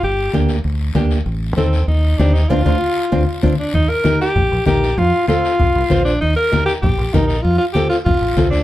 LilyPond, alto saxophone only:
\new Staff \with { instrumentName = "Alto saxophone" } { \time 4/4 \key ees \lydian \tempo 4 = 194 g'4 r2. | r4 c'4 ees'4 d'8 ees'8 | f'2. r8 d'8 | ees'8 bes'4 g'4. g'4 |
f'4 f'2~ f'8 d'8 | ees'8 bes'4 g'8 g'4 ees'8 ees'8 | f'8 f'8 g'8 f'8 f'4. d'8 | }